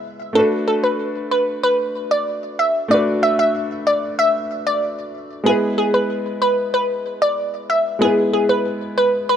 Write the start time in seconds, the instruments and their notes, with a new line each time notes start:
Already playing: grand piano G#3 B3 E4 B4
0.33 grand piano A3 D4 F#4, synth pluck A4
0.39 grand piano B4
0.68 synth pluck A4
0.84 synth pluck B4
1.31 synth pluck B4
1.63 synth pluck B4
2.11 synth pluck D5
2.59 synth pluck E5
2.88 grand piano A3 D4 F#4, synth pluck D5
2.94 grand piano B4
3.23 synth pluck E5
3.39 synth pluck E5
3.87 synth pluck D5
4.19 synth pluck E5
4.67 synth pluck D5
5.44 grand piano G#3 B3 E4, synth pluck G#4
5.49 grand piano B4
5.78 synth pluck G#4
5.94 synth pluck B4
6.42 synth pluck B4
6.74 synth pluck B4
7.22 synth pluck D5
7.70 synth pluck E5
7.99 grand piano G#3 B3 E4, synth pluck G#4
8.05 grand piano B4
8.33 synth pluck G#4
8.49 synth pluck B4
8.98 synth pluck B4
9.29 synth pluck B4